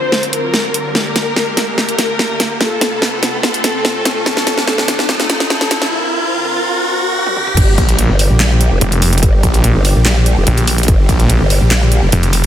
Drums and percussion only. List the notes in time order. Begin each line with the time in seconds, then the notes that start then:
0.12 snare
0.23 closed hi-hat
0.33 closed hi-hat
0.54 snare
0.74 closed hi-hat
0.95 snare
1.16 snare, closed hi-hat
1.36 snare
1.57 snare, closed hi-hat
1.78 snare
1.89 closed hi-hat
1.99 snare, closed hi-hat
2.19 snare
2.40 snare, closed hi-hat
2.61 snare
2.81 snare, closed hi-hat
3.02 snare
3.23 snare, closed hi-hat
3.43 snare
3.54 closed hi-hat
3.64 snare, closed hi-hat
3.85 snare
4.05 snare, closed hi-hat
4.26 snare
4.37 snare
4.47 snare, closed hi-hat
4.58 snare
4.68 snare
4.78 snare
4.88 snare, closed hi-hat
4.99 snare
5.09 snare
5.20 snare, closed hi-hat
5.30 snare, closed hi-hat
5.40 snare
5.50 snare
5.61 snare
5.71 snare, closed hi-hat
5.82 snare
7.27 high tom
7.36 mid tom
7.47 mid tom
7.57 kick, closed hi-hat, crash
7.78 kick, closed hi-hat
7.89 closed hi-hat
7.99 closed hi-hat
8.19 open hi-hat
8.40 snare, clap, closed hi-hat
8.61 closed hi-hat
8.81 closed hi-hat
8.92 closed hi-hat
9.02 open hi-hat
9.13 closed hi-hat
9.18 closed hi-hat
9.23 kick, closed hi-hat
9.43 kick, closed hi-hat
9.54 closed hi-hat
9.64 closed hi-hat
9.85 open hi-hat
10.05 snare, clap, closed hi-hat
10.26 closed hi-hat
10.47 closed hi-hat
10.58 closed hi-hat
10.67 open hi-hat
10.78 closed hi-hat
10.83 closed hi-hat
10.88 kick, closed hi-hat
11.09 kick, closed hi-hat
11.20 closed hi-hat
11.30 closed hi-hat
11.50 open hi-hat
11.71 snare, clap, closed hi-hat
11.92 closed hi-hat
12.12 closed hi-hat
12.23 closed hi-hat
12.33 open hi-hat